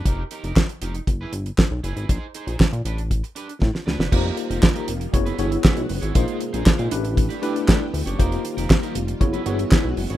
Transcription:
<<
  \new Staff \with { instrumentName = "Clean electric guitar" } { \time 4/4 \key f \mixolydian \tempo 4 = 118 <ees' g' bes'>16 r16 <ees' g' bes'>16 <ees' g' bes'>16 r8 <ees' g' bes'>16 r8 <e' gis' b'>16 r4 <e' gis' b'>16 <e' gis' b'>16 | <ees' aes' c''>16 r16 <ees' aes' c''>16 <ees' aes' c''>16 r8 <d' g' b'>16 r8. <d' g' b'>16 r8. <d' g' b'>16 <d' g' b'>16 | <ees' g' bes'>8 r16 <ees' g' bes'>16 r16 <ees' g' bes'>16 r8. <e' gis' b'>16 <e' gis' b'>16 r16 <e' gis' b'>16 r8 <e' gis' cis''>16 | <ees' aes' c''>8 r16 <ees' aes' c''>16 r16 <ees' aes' c''>16 r8. <d' g' b'>16 <d' g' b'>16 r16 <d' g' b'>16 r8 <d' g' cis''>16 |
<ees' g' bes'>8 r16 <ees' g' bes'>16 r16 <ees' g' bes'>16 r8. <e' gis' b'>16 <e' gis' b'>16 r16 <e' gis' b'>16 r8 <e' gis' cis''>16 | }
  \new Staff \with { instrumentName = "Tine electric piano" } { \time 4/4 \key f \mixolydian r1 | r1 | <bes ees' f' g' c''>4. r8 <b e' fis' gis' cis''>8 <b e' fis' gis' cis''>4 r8 | <bes ees' f' aes' c''>4. <a d' e' g' b'>4 <a d' e' g' b'>4 r8 |
<bes ees' f' g' c''>4. r8 <b e' fis' gis' cis''>8 <b e' fis' gis' cis''>4 r8 | }
  \new Staff \with { instrumentName = "String machine" } { \time 4/4 \key f \mixolydian << { r1 | r1 | <ees bes f'>2 <e b fis'>2 | <c bes ees'>4. <d b g'>2~ <d b g'>8 |
<ees bes f'>2 <e b fis'>2 | } \\ { r1 | r1 | g2 gis2~ | gis4. a2~ a8 |
g2 gis2 | } >> }
  \new Staff \with { instrumentName = "Analog synth bass" } { \clef bass \time 4/4 \key f \mixolydian f,,8 r16 f,,16 r8 f,,8 fis,,8 g,,8 r16 b,,16 fis,,16 gis,,16 | bes,,16 r8 bes,,16 bes,16 bes,16 a,,4 r8 a,16 r16 d,16 fis,,16 | f,,8 r16 f,,16 r8 f,,8 fis,,8 g,,8 r16 b,,16 fis,,16 gis,,16 | bes,,16 r8 bes,,16 bes,16 bes,16 a,,4 r8 a,16 r16 d,16 fis,,16 |
f,,8 r16 f,,16 r8 f,,8 fis,,8 g,,8 r16 b,,16 fis,,16 gis,,16 | }
  \new DrumStaff \with { instrumentName = "Drums" } \drummode { \time 4/4 <hh bd>8 hh16 hh16 <hc bd sn>16 hh16 hh16 hh16 <hh bd>8 hh16 hh16 <hc bd sn>8 hh16 hh16 | <hh bd>8 hh16 hh16 <hc bd sn>16 hh16 hh16 hh16 <hh bd>16 hh16 hh16 hh16 <bd sn>16 sn16 sn16 sn16 | <cymc bd>8 hh16 hh16 <hc bd sn>16 hh16 hh16 hh16 <hh bd>16 hh16 hh16 hh16 <hc bd sn>16 hh16 hho16 hh16 | <hh bd>16 hh16 hh16 hh16 <hc bd sn>16 hh16 hh16 hh16 <hh bd>16 hh16 hh16 hh16 <hc bd sn>8 hho16 hh16 |
<hh bd>16 hh16 hh16 hh16 <hc bd sn>16 hh16 hh16 hh16 <hh bd>16 hh16 hh16 hh16 <hc bd sn>8 hho16 hh16 | }
>>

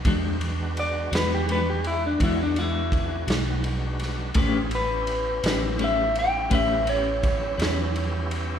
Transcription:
<<
  \new Staff \with { instrumentName = "Clean electric guitar" } { \time 12/8 \key a \major \tempo 4. = 56 r4 d''8 b'16 g'16 b'16 g'16 e'16 d'16 e'16 d'16 e'4 r4. | r8 b'4. e''8 g''8 e''8 cis''2~ cis''8 | }
  \new Staff \with { instrumentName = "Clean electric guitar" } { \time 12/8 \key a \major <e gis d' fis'>8 r4 <gis d' fis'>8 <e gis d' fis'>8 r8 <e gis d' fis'>8 <gis d' fis'>8 r8 <gis d' fis'>8 r4 | <a cis' g' b'>8 r4 <cis' g' b'>8 <a cis' g' b'>8 r8 <a cis' g' b'>8 <cis' g' b'>8 r8 <cis' g' b'>8 r4 | }
  \new Staff \with { instrumentName = "Tonewheel organ" } { \time 12/8 \key a \major <a c' dis' g'>8 <gis b d' fis'>1~ <gis b d' fis'>4. | <c' d' f' gis'>8 <b cis' e' g'>1~ <b cis' e' g'>4. | }
  \new Staff \with { instrumentName = "Fingered electric bass" } { \clef bass \time 12/8 \key a \major e,4. e,4. e,4. b,,4. | a,,4. a,,4. a,,4. e,4. | }
  \new DrumStaff \with { instrumentName = "Drums" } \drummode { \time 12/8 <bd cymr>8 cymr8 cymr8 <cymr sn>8 cymr8 cymr8 <bd cymr>8 cymr8 <bd cymr>8 <cymr sn>8 cymr8 <cymr sn>8 | <bd cymr>8 cymr8 cymr8 <cymr sn>8 cymr8 cymr8 <bd cymr>8 cymr8 <bd cymr>8 <cymr sn>8 cymr8 cymr8 | }
>>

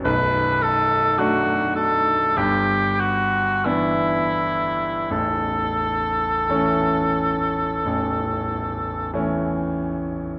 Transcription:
<<
  \new Staff \with { instrumentName = "Cor anglais" } { \time 4/4 \key a \mixolydian \tempo 4 = 46 b'8 a'8 fis'8 a'8 g'8 fis'8 e'4 | a'2. r4 | }
  \new Staff \with { instrumentName = "Grand piano" } { \clef bass \time 4/4 \key a \mixolydian <b,,, b,,>4 <fis a d'>4 <g,, g,>4 <e b d'>4 | <a,,, a,,>4 <e a cis'>4 <a,,, a,,>4 <e a cis'>4 | }
>>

